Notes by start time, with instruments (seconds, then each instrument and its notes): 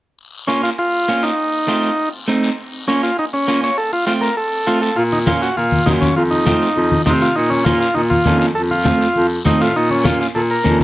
0.19 long guiro
0.48 clean electric guitar A#3 C#4 F4, transistor combo organ C#4, short guiro
0.63 transistor combo organ F4, short guiro
0.78 transistor combo organ F4, long guiro
1.08 clean electric guitar A#3 C#4 F4, short guiro
1.23 transistor combo organ D#4, short guiro
1.38 long guiro
1.68 clean electric guitar A3 C4 F4, short guiro
1.83 short guiro
1.98 long guiro
2.28 clean electric guitar A3 C4 D#4, short guiro
2.43 short guiro
2.58 long guiro
2.88 clean electric guitar A#3 C#4 F4, transistor combo organ C#4, short guiro
3.03 transistor combo organ F4, short guiro
3.18 transistor combo organ D#4, long guiro
3.33 transistor combo organ C#4
3.48 clean electric guitar A#3 C#4 F4, short guiro
3.63 transistor combo organ C#5, short guiro
3.78 transistor combo organ A4, long guiro
3.93 transistor combo organ F4
4.06 clean electric guitar A3 C4 F4, transistor combo organ F4, short guiro
4.21 transistor combo organ A#4, short guiro
4.37 transistor combo organ A4, long guiro
4.67 clean electric guitar A3 C4 F4, transistor combo organ F4, short guiro
4.81 transistor combo organ A4, short guiro
4.96 baritone saxophone A#2, transistor combo organ F4, long guiro
5.12 transistor combo organ D#4, high conga
5.26 clean electric guitar A#3 C#4 F4, transistor combo organ F4, high conga, short guiro
5.42 transistor combo organ F#4, short guiro
5.57 baritone saxophone A#2, transistor combo organ F4, high conga, long guiro
5.72 high conga
5.86 baritone saxophone F#2, clean electric guitar A#3 C#4 F4, transistor combo organ D#4, high conga, short guiro
6.01 transistor combo organ C#4, high conga, short guiro
6.16 baritone saxophone F2, transistor combo organ F4, long guiro
6.31 transistor combo organ D#4, high conga
6.46 clean electric guitar A3 C4 F4, high conga, short guiro
6.62 short guiro
6.77 baritone saxophone F2, high conga, long guiro
6.92 high conga
7.06 baritone saxophone C3, clean electric guitar A3 C4 F4, transistor combo organ D#4, high conga, short guiro
7.21 transistor combo organ F4, short guiro
7.36 baritone saxophone A#2, transistor combo organ D#4, long guiro
7.50 transistor combo organ C#4, high conga
7.64 clean electric guitar A#3 C#4 F4, transistor combo organ F4, high conga, short guiro
7.80 transistor combo organ F4, short guiro
7.94 baritone saxophone A#2, transistor combo organ D#4, high conga, long guiro
8.10 transistor combo organ F4, high conga
8.25 baritone saxophone F2, clean electric guitar A#3 C#4 D#4, high conga, short guiro
8.39 transistor combo organ F4, short guiro
8.55 baritone saxophone F2, transistor combo organ A4, long guiro
8.71 transistor combo organ F4, high conga
8.85 clean electric guitar A3 C4 F4, high conga, short guiro
9.01 short guiro
9.16 baritone saxophone F2, high conga, long guiro
9.45 baritone saxophone F2, clean electric guitar A3 C4 F4, transistor combo organ D#4, high conga, short guiro
9.61 baritone saxophone A2, transistor combo organ F4, short guiro
9.76 baritone saxophone A#2, transistor combo organ D#4, long guiro
9.90 transistor combo organ C#4, high conga
10.04 clean electric guitar A#3 C#4 F4, transistor combo organ F4, high conga, short guiro
10.21 transistor combo organ F4, short guiro
10.35 baritone saxophone A#2, transistor combo organ A4, high conga, long guiro
10.51 transistor combo organ A#4
10.64 baritone saxophone F2, clean electric guitar A#3 C#4 D#4, high conga, short guiro
10.81 high conga